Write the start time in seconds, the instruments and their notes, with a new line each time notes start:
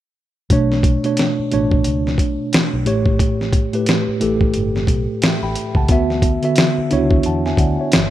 0.50 fingered electric bass B1, tine electric piano B2 A3 D4 C#5, kick, closed hi-hat
0.72 snare
0.83 kick, closed hi-hat
1.04 tine electric piano B2 A3 D4 C#5, closed hi-hat
1.17 snare, closed hi-hat
1.39 muted fingered electric bass stroke
1.51 fingered electric bass A1, tine electric piano B2 A3 D4 C#5, closed hi-hat
1.71 kick
1.84 fingered electric bass C#2, closed hi-hat
2.07 snare
2.18 fingered electric bass B1, kick, closed hi-hat
2.53 muted fingered electric bass stroke, snare, closed hi-hat
2.73 fingered electric bass B1
2.85 fingered electric bass A1, tine electric piano A2 A3 G4 C#5, closed hi-hat
3.06 kick
3.19 kick, closed hi-hat
3.41 snare
3.53 kick, closed hi-hat
3.73 tine electric piano A2 A3 G4 B4, closed hi-hat
3.86 snare, closed hi-hat
4.08 muted fingered electric bass stroke
4.20 fingered electric bass A1, tine electric piano A2 A3 G4 A4, closed hi-hat
4.41 kick
4.54 fingered electric bass G1, closed hi-hat
4.76 snare
4.87 fingered electric bass B1, kick, closed hi-hat
5.22 tine electric piano E5 G5, muted fingered electric bass stroke, snare, closed hi-hat
5.43 fingered electric bass A1, tine electric piano G5 B5
5.55 closed hi-hat
5.75 fingered electric bass C#2, tine electric piano F#5 A5, kick
5.88 fingered electric bass D2, tine electric piano D3 B3 F#4 E5, kick, closed hi-hat
6.10 snare
6.22 kick, closed hi-hat
6.42 tine electric piano D3 B3 F#4 E5, closed hi-hat
6.56 snare, closed hi-hat
6.78 muted fingered electric bass stroke
6.91 fingered electric bass C#2, tine electric piano B3 D4 E4 C#5, closed hi-hat
6.98 tine electric piano F#4
7.11 kick
7.23 fingered electric bass E2, tine electric piano F#5 A5, closed hi-hat
7.46 tine electric piano E5 G#5, snare
7.57 fingered electric bass D2, tine electric piano D5 F#5, kick, closed hi-hat
7.80 tine electric piano C#5 E5
7.92 fingered electric bass G1, snare, closed hi-hat